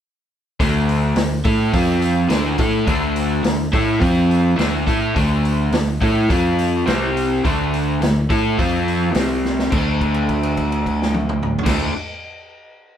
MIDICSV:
0, 0, Header, 1, 4, 480
1, 0, Start_track
1, 0, Tempo, 570342
1, 487, Time_signature, 4, 2, 24, 8
1, 10919, End_track
2, 0, Start_track
2, 0, Title_t, "Overdriven electric guitar"
2, 0, Program_c, 0, 29
2, 504, Note_on_c, 0, 62, 86
2, 505, Note_on_c, 0, 50, 87
2, 509, Note_on_c, 0, 57, 96
2, 969, Note_off_c, 0, 57, 0
2, 969, Note_off_c, 0, 62, 0
2, 970, Note_off_c, 0, 50, 0
2, 979, Note_on_c, 0, 57, 68
2, 983, Note_on_c, 0, 50, 65
2, 1166, Note_off_c, 0, 57, 0
2, 1168, Note_off_c, 0, 50, 0
2, 1216, Note_on_c, 0, 57, 81
2, 1222, Note_on_c, 0, 64, 87
2, 1226, Note_on_c, 0, 69, 93
2, 1446, Note_off_c, 0, 57, 0
2, 1449, Note_off_c, 0, 64, 0
2, 1451, Note_off_c, 0, 69, 0
2, 1451, Note_on_c, 0, 53, 97
2, 1456, Note_on_c, 0, 60, 84
2, 1458, Note_on_c, 0, 65, 101
2, 1922, Note_off_c, 0, 53, 0
2, 1926, Note_on_c, 0, 50, 90
2, 1927, Note_off_c, 0, 60, 0
2, 1927, Note_off_c, 0, 65, 0
2, 1934, Note_on_c, 0, 57, 89
2, 1935, Note_on_c, 0, 62, 97
2, 2160, Note_off_c, 0, 57, 0
2, 2162, Note_off_c, 0, 50, 0
2, 2166, Note_off_c, 0, 62, 0
2, 2170, Note_on_c, 0, 57, 76
2, 2172, Note_on_c, 0, 64, 83
2, 2178, Note_on_c, 0, 69, 93
2, 2396, Note_off_c, 0, 57, 0
2, 2405, Note_off_c, 0, 64, 0
2, 2406, Note_on_c, 0, 57, 97
2, 2408, Note_off_c, 0, 69, 0
2, 2411, Note_on_c, 0, 50, 77
2, 2412, Note_on_c, 0, 62, 98
2, 2883, Note_off_c, 0, 50, 0
2, 2883, Note_off_c, 0, 57, 0
2, 2886, Note_off_c, 0, 62, 0
2, 2894, Note_on_c, 0, 50, 60
2, 2894, Note_on_c, 0, 57, 72
2, 3086, Note_off_c, 0, 50, 0
2, 3086, Note_off_c, 0, 57, 0
2, 3134, Note_on_c, 0, 57, 86
2, 3136, Note_on_c, 0, 64, 91
2, 3138, Note_on_c, 0, 69, 87
2, 3363, Note_off_c, 0, 57, 0
2, 3364, Note_on_c, 0, 53, 89
2, 3365, Note_off_c, 0, 64, 0
2, 3366, Note_on_c, 0, 60, 89
2, 3369, Note_on_c, 0, 65, 97
2, 3370, Note_off_c, 0, 69, 0
2, 3836, Note_off_c, 0, 53, 0
2, 3836, Note_off_c, 0, 60, 0
2, 3838, Note_off_c, 0, 65, 0
2, 3839, Note_on_c, 0, 50, 89
2, 3839, Note_on_c, 0, 57, 89
2, 3842, Note_on_c, 0, 62, 101
2, 4081, Note_off_c, 0, 50, 0
2, 4081, Note_off_c, 0, 57, 0
2, 4083, Note_off_c, 0, 62, 0
2, 4093, Note_on_c, 0, 57, 91
2, 4096, Note_on_c, 0, 69, 94
2, 4097, Note_on_c, 0, 64, 85
2, 4329, Note_off_c, 0, 57, 0
2, 4330, Note_off_c, 0, 69, 0
2, 4331, Note_off_c, 0, 64, 0
2, 4332, Note_on_c, 0, 50, 87
2, 4339, Note_on_c, 0, 62, 97
2, 4341, Note_on_c, 0, 57, 89
2, 4809, Note_off_c, 0, 50, 0
2, 4813, Note_off_c, 0, 62, 0
2, 4814, Note_off_c, 0, 57, 0
2, 4824, Note_on_c, 0, 50, 67
2, 4825, Note_on_c, 0, 57, 70
2, 5014, Note_off_c, 0, 50, 0
2, 5015, Note_off_c, 0, 57, 0
2, 5057, Note_on_c, 0, 57, 83
2, 5063, Note_on_c, 0, 64, 85
2, 5064, Note_on_c, 0, 69, 88
2, 5292, Note_off_c, 0, 57, 0
2, 5295, Note_off_c, 0, 64, 0
2, 5295, Note_on_c, 0, 53, 90
2, 5296, Note_off_c, 0, 69, 0
2, 5300, Note_on_c, 0, 60, 101
2, 5302, Note_on_c, 0, 65, 99
2, 5768, Note_off_c, 0, 53, 0
2, 5772, Note_on_c, 0, 48, 94
2, 5773, Note_off_c, 0, 60, 0
2, 5775, Note_off_c, 0, 65, 0
2, 5777, Note_on_c, 0, 55, 97
2, 5783, Note_on_c, 0, 60, 98
2, 6250, Note_off_c, 0, 48, 0
2, 6253, Note_off_c, 0, 55, 0
2, 6256, Note_off_c, 0, 60, 0
2, 6259, Note_on_c, 0, 50, 90
2, 6265, Note_on_c, 0, 57, 87
2, 6270, Note_on_c, 0, 62, 99
2, 6734, Note_off_c, 0, 50, 0
2, 6737, Note_off_c, 0, 57, 0
2, 6739, Note_off_c, 0, 62, 0
2, 6743, Note_on_c, 0, 50, 60
2, 6750, Note_on_c, 0, 57, 69
2, 6935, Note_off_c, 0, 50, 0
2, 6939, Note_off_c, 0, 57, 0
2, 6980, Note_on_c, 0, 57, 80
2, 6983, Note_on_c, 0, 64, 91
2, 6985, Note_on_c, 0, 69, 106
2, 7214, Note_off_c, 0, 57, 0
2, 7215, Note_on_c, 0, 53, 90
2, 7216, Note_off_c, 0, 64, 0
2, 7216, Note_off_c, 0, 69, 0
2, 7223, Note_on_c, 0, 60, 89
2, 7224, Note_on_c, 0, 65, 104
2, 7702, Note_off_c, 0, 53, 0
2, 7702, Note_on_c, 0, 48, 94
2, 7703, Note_off_c, 0, 60, 0
2, 7703, Note_on_c, 0, 55, 92
2, 7712, Note_off_c, 0, 65, 0
2, 7712, Note_on_c, 0, 60, 90
2, 8167, Note_off_c, 0, 48, 0
2, 8170, Note_on_c, 0, 50, 74
2, 8174, Note_off_c, 0, 55, 0
2, 8179, Note_off_c, 0, 60, 0
2, 8192, Note_on_c, 0, 57, 85
2, 8208, Note_on_c, 0, 62, 96
2, 9791, Note_off_c, 0, 50, 0
2, 9794, Note_on_c, 0, 50, 79
2, 9812, Note_off_c, 0, 57, 0
2, 9815, Note_on_c, 0, 57, 94
2, 9828, Note_off_c, 0, 62, 0
2, 9832, Note_on_c, 0, 62, 104
2, 10016, Note_off_c, 0, 50, 0
2, 10027, Note_off_c, 0, 57, 0
2, 10035, Note_off_c, 0, 62, 0
2, 10919, End_track
3, 0, Start_track
3, 0, Title_t, "Picked electric bass"
3, 0, Program_c, 1, 34
3, 503, Note_on_c, 1, 38, 93
3, 943, Note_off_c, 1, 38, 0
3, 970, Note_on_c, 1, 38, 66
3, 1193, Note_off_c, 1, 38, 0
3, 1221, Note_on_c, 1, 45, 83
3, 1439, Note_off_c, 1, 45, 0
3, 1464, Note_on_c, 1, 41, 81
3, 1905, Note_off_c, 1, 41, 0
3, 1933, Note_on_c, 1, 38, 82
3, 2156, Note_off_c, 1, 38, 0
3, 2177, Note_on_c, 1, 45, 82
3, 2398, Note_off_c, 1, 45, 0
3, 2417, Note_on_c, 1, 38, 86
3, 2863, Note_off_c, 1, 38, 0
3, 2890, Note_on_c, 1, 38, 74
3, 3115, Note_off_c, 1, 38, 0
3, 3144, Note_on_c, 1, 45, 82
3, 3363, Note_off_c, 1, 45, 0
3, 3379, Note_on_c, 1, 41, 89
3, 3825, Note_off_c, 1, 41, 0
3, 3857, Note_on_c, 1, 38, 94
3, 4081, Note_off_c, 1, 38, 0
3, 4100, Note_on_c, 1, 45, 86
3, 4323, Note_off_c, 1, 45, 0
3, 4339, Note_on_c, 1, 38, 98
3, 4786, Note_off_c, 1, 38, 0
3, 4806, Note_on_c, 1, 38, 73
3, 5036, Note_off_c, 1, 38, 0
3, 5062, Note_on_c, 1, 45, 93
3, 5285, Note_off_c, 1, 45, 0
3, 5301, Note_on_c, 1, 41, 87
3, 5748, Note_off_c, 1, 41, 0
3, 5782, Note_on_c, 1, 36, 81
3, 6229, Note_off_c, 1, 36, 0
3, 6269, Note_on_c, 1, 38, 96
3, 6713, Note_off_c, 1, 38, 0
3, 6737, Note_on_c, 1, 38, 70
3, 6963, Note_off_c, 1, 38, 0
3, 6986, Note_on_c, 1, 45, 93
3, 7207, Note_off_c, 1, 45, 0
3, 7226, Note_on_c, 1, 41, 89
3, 7670, Note_off_c, 1, 41, 0
3, 7703, Note_on_c, 1, 36, 89
3, 8148, Note_off_c, 1, 36, 0
3, 8183, Note_on_c, 1, 38, 86
3, 9718, Note_off_c, 1, 38, 0
3, 9816, Note_on_c, 1, 38, 89
3, 10012, Note_off_c, 1, 38, 0
3, 10919, End_track
4, 0, Start_track
4, 0, Title_t, "Drums"
4, 504, Note_on_c, 9, 36, 92
4, 507, Note_on_c, 9, 46, 68
4, 589, Note_off_c, 9, 36, 0
4, 591, Note_off_c, 9, 46, 0
4, 747, Note_on_c, 9, 46, 57
4, 831, Note_off_c, 9, 46, 0
4, 974, Note_on_c, 9, 46, 79
4, 983, Note_on_c, 9, 38, 107
4, 1058, Note_off_c, 9, 46, 0
4, 1067, Note_off_c, 9, 38, 0
4, 1214, Note_on_c, 9, 46, 58
4, 1221, Note_on_c, 9, 36, 108
4, 1298, Note_off_c, 9, 46, 0
4, 1306, Note_off_c, 9, 36, 0
4, 1461, Note_on_c, 9, 36, 100
4, 1461, Note_on_c, 9, 46, 75
4, 1545, Note_off_c, 9, 36, 0
4, 1545, Note_off_c, 9, 46, 0
4, 1699, Note_on_c, 9, 46, 54
4, 1783, Note_off_c, 9, 46, 0
4, 1932, Note_on_c, 9, 46, 69
4, 1941, Note_on_c, 9, 38, 107
4, 2016, Note_off_c, 9, 46, 0
4, 2026, Note_off_c, 9, 38, 0
4, 2171, Note_on_c, 9, 46, 61
4, 2179, Note_on_c, 9, 36, 103
4, 2255, Note_off_c, 9, 46, 0
4, 2264, Note_off_c, 9, 36, 0
4, 2416, Note_on_c, 9, 46, 64
4, 2420, Note_on_c, 9, 36, 91
4, 2501, Note_off_c, 9, 46, 0
4, 2504, Note_off_c, 9, 36, 0
4, 2658, Note_on_c, 9, 46, 59
4, 2742, Note_off_c, 9, 46, 0
4, 2896, Note_on_c, 9, 46, 75
4, 2906, Note_on_c, 9, 38, 106
4, 2980, Note_off_c, 9, 46, 0
4, 2990, Note_off_c, 9, 38, 0
4, 3142, Note_on_c, 9, 36, 103
4, 3146, Note_on_c, 9, 46, 53
4, 3226, Note_off_c, 9, 36, 0
4, 3230, Note_off_c, 9, 46, 0
4, 3380, Note_on_c, 9, 36, 104
4, 3383, Note_on_c, 9, 46, 70
4, 3464, Note_off_c, 9, 36, 0
4, 3467, Note_off_c, 9, 46, 0
4, 3626, Note_on_c, 9, 46, 47
4, 3710, Note_off_c, 9, 46, 0
4, 3860, Note_on_c, 9, 46, 63
4, 3869, Note_on_c, 9, 38, 93
4, 3944, Note_off_c, 9, 46, 0
4, 3953, Note_off_c, 9, 38, 0
4, 4103, Note_on_c, 9, 36, 102
4, 4105, Note_on_c, 9, 46, 52
4, 4187, Note_off_c, 9, 36, 0
4, 4189, Note_off_c, 9, 46, 0
4, 4343, Note_on_c, 9, 36, 94
4, 4344, Note_on_c, 9, 46, 67
4, 4427, Note_off_c, 9, 36, 0
4, 4429, Note_off_c, 9, 46, 0
4, 4586, Note_on_c, 9, 46, 57
4, 4670, Note_off_c, 9, 46, 0
4, 4817, Note_on_c, 9, 46, 75
4, 4826, Note_on_c, 9, 38, 109
4, 4901, Note_off_c, 9, 46, 0
4, 4910, Note_off_c, 9, 38, 0
4, 5063, Note_on_c, 9, 36, 103
4, 5065, Note_on_c, 9, 46, 57
4, 5148, Note_off_c, 9, 36, 0
4, 5149, Note_off_c, 9, 46, 0
4, 5303, Note_on_c, 9, 36, 106
4, 5307, Note_on_c, 9, 46, 78
4, 5387, Note_off_c, 9, 36, 0
4, 5391, Note_off_c, 9, 46, 0
4, 5542, Note_on_c, 9, 46, 57
4, 5626, Note_off_c, 9, 46, 0
4, 5784, Note_on_c, 9, 46, 72
4, 5793, Note_on_c, 9, 38, 101
4, 5868, Note_off_c, 9, 46, 0
4, 5878, Note_off_c, 9, 38, 0
4, 6031, Note_on_c, 9, 46, 54
4, 6115, Note_off_c, 9, 46, 0
4, 6268, Note_on_c, 9, 36, 93
4, 6270, Note_on_c, 9, 46, 72
4, 6352, Note_off_c, 9, 36, 0
4, 6354, Note_off_c, 9, 46, 0
4, 6510, Note_on_c, 9, 46, 57
4, 6594, Note_off_c, 9, 46, 0
4, 6747, Note_on_c, 9, 46, 77
4, 6757, Note_on_c, 9, 38, 109
4, 6832, Note_off_c, 9, 46, 0
4, 6841, Note_off_c, 9, 38, 0
4, 6986, Note_on_c, 9, 36, 98
4, 6986, Note_on_c, 9, 46, 55
4, 7070, Note_off_c, 9, 46, 0
4, 7071, Note_off_c, 9, 36, 0
4, 7229, Note_on_c, 9, 36, 97
4, 7234, Note_on_c, 9, 46, 70
4, 7313, Note_off_c, 9, 36, 0
4, 7318, Note_off_c, 9, 46, 0
4, 7471, Note_on_c, 9, 46, 48
4, 7555, Note_off_c, 9, 46, 0
4, 7696, Note_on_c, 9, 46, 67
4, 7705, Note_on_c, 9, 38, 93
4, 7780, Note_off_c, 9, 46, 0
4, 7789, Note_off_c, 9, 38, 0
4, 7953, Note_on_c, 9, 38, 57
4, 8037, Note_off_c, 9, 38, 0
4, 8071, Note_on_c, 9, 38, 77
4, 8155, Note_off_c, 9, 38, 0
4, 8179, Note_on_c, 9, 49, 76
4, 8184, Note_on_c, 9, 36, 94
4, 8264, Note_off_c, 9, 49, 0
4, 8268, Note_off_c, 9, 36, 0
4, 8424, Note_on_c, 9, 36, 67
4, 8426, Note_on_c, 9, 49, 46
4, 8508, Note_off_c, 9, 36, 0
4, 8510, Note_off_c, 9, 49, 0
4, 8536, Note_on_c, 9, 57, 43
4, 8620, Note_off_c, 9, 57, 0
4, 8657, Note_on_c, 9, 49, 46
4, 8662, Note_on_c, 9, 36, 61
4, 8742, Note_off_c, 9, 49, 0
4, 8746, Note_off_c, 9, 36, 0
4, 8780, Note_on_c, 9, 57, 51
4, 8864, Note_off_c, 9, 57, 0
4, 8897, Note_on_c, 9, 49, 49
4, 8902, Note_on_c, 9, 36, 60
4, 8981, Note_off_c, 9, 49, 0
4, 8986, Note_off_c, 9, 36, 0
4, 9022, Note_on_c, 9, 57, 44
4, 9107, Note_off_c, 9, 57, 0
4, 9143, Note_on_c, 9, 36, 62
4, 9145, Note_on_c, 9, 49, 47
4, 9227, Note_off_c, 9, 36, 0
4, 9229, Note_off_c, 9, 49, 0
4, 9277, Note_on_c, 9, 38, 75
4, 9361, Note_off_c, 9, 38, 0
4, 9378, Note_on_c, 9, 48, 89
4, 9462, Note_off_c, 9, 48, 0
4, 9503, Note_on_c, 9, 47, 97
4, 9587, Note_off_c, 9, 47, 0
4, 9617, Note_on_c, 9, 45, 98
4, 9701, Note_off_c, 9, 45, 0
4, 9751, Note_on_c, 9, 43, 101
4, 9813, Note_on_c, 9, 36, 106
4, 9813, Note_on_c, 9, 49, 103
4, 9822, Note_on_c, 9, 38, 93
4, 9835, Note_off_c, 9, 43, 0
4, 9897, Note_off_c, 9, 36, 0
4, 9897, Note_off_c, 9, 49, 0
4, 9906, Note_off_c, 9, 38, 0
4, 10919, End_track
0, 0, End_of_file